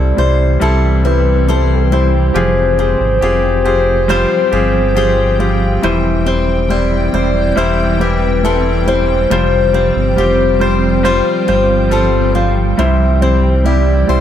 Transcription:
Already playing: C2 G2 C3 E3 G3 C4 E4 A4 C5 D5 G5
0.17 C2 G3 E4 C5
0.60 C2 G3 C4 E4 A4 E5
1.04 G3 C4 E4 B4
1.47 G3 C4 E4 A4 C5
1.56 C5
1.65 B4
1.74 A4
1.83 B4
1.91 G3 C4 E4 C5
2.34 F1 C3 F3 F4 G4 G#4
2.78 C4 F4 G4 G#4
3.00 G#1
3.21 F1 F4 G4 G#4
3.65 F4 G4 G#4 C5
4.08 G3 C4 F4 G4 C5
4.51 G1 F4 G4 G#4
4.95 C4 F4 G4 G#4 C5
5.39 G3 C4 F4 G4 F5
5.82 E1 E3 G3 E4 C5 E5
6.26 G3 C4 E4 C5
6.69 G3 E4 C5 D5
7.13 E1 G3 E4 C5
7.56 E1 G3 C4 E4 C5 E5
7.99 G3 E4 G4 B4
8.43 G3 C4 E4 A4
8.86 G3 C4 E4 C5
9.30 F1 C3 F3 G3 F4 C5
9.73 G3 C4 F4 C5
9.96 G1
10.16 F1 G3 F4 G4
10.59 G3 F4 C5
11.03 G3 C4 F4 C5
11.47 G1 G3 F4 C5
11.90 G3 C4 F4 A4 C5
12.34 G3 C4 F4 C5 F5
12.77 C2 G2 C3 E3 G3 E4 C5 E5
13.21 G3 C4 E4 C5
13.64 G3 E4 G4 D5
14.07 C2 G3 E4 C5

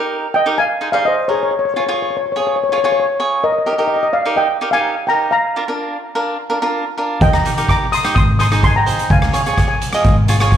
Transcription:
Already playing: D#4 G4 A#4 D#5
0.00 A#4
0.34 D#5 G5
0.46 D#4 G4 A#4
0.58 F5 G#5
0.81 D#4 G#4 C5
0.92 D#4 G#4 C5 D5 F5
1.05 C5 D#5
1.28 D#4 G#4 A#4 C#5
1.35 C#5
1.43 C#5
1.51 C#5
1.59 C#5
1.65 C#5
1.74 F4 G#4 C#5
1.80 C#5
1.87 F4 G#4 C#5
1.94 C#5
2.02 C#5
2.10 C#5
2.17 C#5
2.26 C#5
2.32 C#5
2.36 F4 G#4 C#5
2.47 C#5
2.56 C#5
2.64 C#5
2.69 F4 G#4 C#5
2.78 C#5
2.84 F4 G#4 C#5
2.92 C#5
3.00 C#5
3.20 F4 G#4 C#5
3.44 A#4 D#5
3.52 D#5
3.59 D#5
3.66 D#4 G4 A#4 D#5
3.73 D#5
3.78 D#4 G4 A#4 D#5
3.87 D#5
3.96 D#5
4.03 D#5
4.13 D5 F5
4.25 D#4 G4 A#4
4.36 D#5 G5
4.61 D#4 G4 A#4
4.71 D#4 G4 A#4 F5 G#5
5.07 D#4 G4 A#4 G5 A#5
5.31 F5 A#5
5.56 D4 F4 A#4
5.68 D4 F4 A#4
6.15 D4 F4 A#4
6.50 D4 F4 A#4
6.62 D4 F4 A#4
6.98 D4 F4 A#4
7.21 D#2 D#5 G5, kick, closed hi-hat
7.33 G5 A#5, cross-stick
7.45 D#4 G4 A#4, closed hi-hat
7.57 D#4 G4 A#4, closed hi-hat
7.69 A#5 D6, kick, cross-stick, closed hi-hat
7.92 C6 D#6, closed hi-hat
8.04 D#4 G4 C5, cross-stick, closed hi-hat
8.15 G#1 C6 D#6, kick, closed hi-hat
8.39 D#4 G#4 C5 C6 D#6, closed hi-hat
8.52 D#4 G#4 C5, cross-stick, closed hi-hat
8.63 G#5 C6, kick, closed hi-hat
8.76 G5 A#5
8.86 D#4 G#4 C5, closed hi-hat
8.99 closed hi-hat
9.10 C#2 F5 G#5, kick, closed hi-hat
9.19 G#5, cross-stick
9.25 G#5
9.32 F4 G#4 C#5 G#5, closed hi-hat
9.41 G#5
9.46 F4 G#4 C#5 G#5, closed hi-hat
9.53 G#5
9.58 G#5, kick, cross-stick, closed hi-hat
9.68 G#5
9.81 closed hi-hat
9.93 F4 G#4 D#5, cross-stick, closed hi-hat
10.04 G#1, kick, closed hi-hat
10.28 F4 G#4 C#5, closed hi-hat
10.40 F4 G#4 C#5, cross-stick, closed hi-hat
10.52 kick, closed hi-hat

